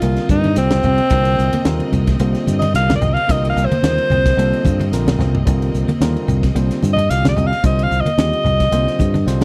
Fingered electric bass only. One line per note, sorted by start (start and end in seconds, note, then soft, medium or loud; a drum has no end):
0.02 0.17 C2 medium
0.29 0.55 G2 loud
0.57 0.83 C2 loud
0.84 0.98 C2 loud
1.11 1.37 C2 medium
1.39 1.53 C2 medium
1.65 1.80 D#2 medium
1.92 2.19 C2 medium
2.20 2.34 C2 medium
2.47 2.73 G2 medium
2.74 3.00 C2 medium
3.01 3.16 C2 medium
3.29 3.55 C2 loud
3.56 3.71 C2 medium
3.83 3.98 D#2 medium
4.11 4.37 C2 medium
4.37 4.52 C2 medium
4.65 4.91 G2 medium
4.92 5.17 A#1 medium
5.19 5.44 C2 medium
5.47 5.73 C2 loud
5.74 5.88 C2 medium
6.00 6.15 D#2 medium
6.28 6.54 C2 medium
6.55 6.69 C2 medium
6.83 7.08 G2 medium
7.10 7.36 C2 medium
7.37 7.51 C2 loud
7.64 7.90 C2 loud
7.91 8.05 C2 medium
8.06 muted fingered electric bass stroke soft
8.18 8.32 D#2 medium
8.45 8.71 C2 medium
8.72 8.86 C2 loud
9.00 9.26 G2 loud
9.26 9.44 C2 medium